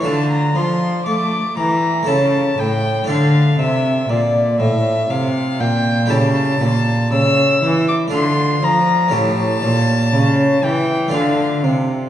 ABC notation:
X:1
M:3/4
L:1/16
Q:1/4=60
K:Dm
V:1 name="Violin"
a b c'2 d'2 b2 a2 g2 | f2 e2 d2 e2 f2 g2 | a4 e'3 d' c'2 b2 | a6 g2 f2 z2 |]
V:2 name="Harpsichord"
[A,DF]8 [A,EA]4 | [A,DA]12 | [A,EG]8 [A,DF]4 | [A,^CG]8 [A,DF]4 |]
V:3 name="Harpsichord" clef=bass
D,2 F,2 A,2 E,2 ^C,2 A,,2 | D,2 C,2 B,,2 A,,2 C,2 B,,2 | ^C,2 B,,2 C,2 E,2 D,2 F,2 | A,,2 B,,2 ^C,2 E,2 D,2 =C,2 |]
V:4 name="Cello" clef=bass
D,2 F,2 A,2 E,2 ^C,2 A,,2 | D,2 C,2 B,,2 A,,2 C,2 B,,2 | ^C,2 B,,2 C,2 E,2 D,2 F,2 | A,,2 B,,2 ^C,2 E,2 D,2 =C,2 |]